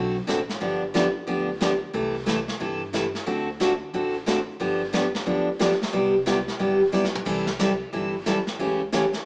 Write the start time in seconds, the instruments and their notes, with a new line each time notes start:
Already playing: upright bass B1, steel-string acoustic guitar D3 A3 C4 F#4 A4
0.27 upright bass A1, steel-string acoustic guitar D3 A3 C4 F#4 A4, snare, hi-hat pedal
0.49 snare
0.60 upright bass G1, steel-string acoustic guitar D3 F3 B3 D4 G4, brush sweep
0.94 steel-string acoustic guitar D3 F3 B3 D4 G4, snare, hi-hat pedal
1.27 upright bass D2, steel-string acoustic guitar D3 F3 B3 D4 G4, brush sweep
1.61 steel-string acoustic guitar D3 F3 B3 D4 G4, snare, hi-hat pedal
1.93 upright bass C2, steel-string acoustic guitar C3 E3 A3 E4 A4, brush sweep
2.26 steel-string acoustic guitar C3 E3 A3 E4 A4, snare, hi-hat pedal
2.48 snare
2.60 upright bass G2, steel-string acoustic guitar C3 E3 A3 E4 A4, brush sweep
2.93 steel-string acoustic guitar C3 E3 A3 E4 A4, snare, hi-hat pedal
3.15 snare
3.26 upright bass D2, steel-string acoustic guitar D3 A3 C4 F#4 A4, brush sweep
3.60 steel-string acoustic guitar D3 A3 C4 F#4 A4, snare, hi-hat pedal
3.94 upright bass A1, steel-string acoustic guitar D3 A3 C4 F#4 A4, brush sweep
4.26 steel-string acoustic guitar D3 A3 C4 F#4 A4, snare, hi-hat pedal
4.60 upright bass G1, steel-string acoustic guitar D3 F3 B3 D4 G4, brush sweep
4.93 steel-string acoustic guitar D3 F3 B3 D4 G4, snare, hi-hat pedal
5.15 snare
5.26 upright bass D2, steel-string acoustic guitar D3 F3 B3 D4 G4, brush sweep
5.59 steel-string acoustic guitar D3 F3 B3 D4 G4, snare, hi-hat pedal
5.71 snare
5.82 snare
5.93 upright bass C2, steel-string acoustic guitar C3 G3 B3 E4 G4, brush sweep
6.26 steel-string acoustic guitar C3 G3 B3 E4 G4, snare, hi-hat pedal
6.48 snare
6.59 upright bass G1, steel-string acoustic guitar C3 G3 B3 E4 G4, brush sweep
6.92 steel-string acoustic guitar C3 G3 B3 E4 G4, hi-hat pedal
7.05 snare
7.15 mid tom
7.25 upright bass C2, steel-string acoustic guitar C3 E3 G3 C4 E4 A4, brush sweep, kick, crash
7.47 snare
7.59 steel-string acoustic guitar C3 E3 G3 C4 E4 A4, snare, hi-hat pedal
7.93 upright bass G1, steel-string acoustic guitar C3 E3 G3 C4 E4 A4, brush sweep
8.26 steel-string acoustic guitar C3 E3 G3 C4 E4 A4, snare, hi-hat pedal
8.47 snare
8.59 upright bass C#2, steel-string acoustic guitar C#3 E3 A3 C#4 G4, brush sweep
8.92 steel-string acoustic guitar C#3 E3 A3 C#4 G4, snare, hi-hat pedal
9.13 snare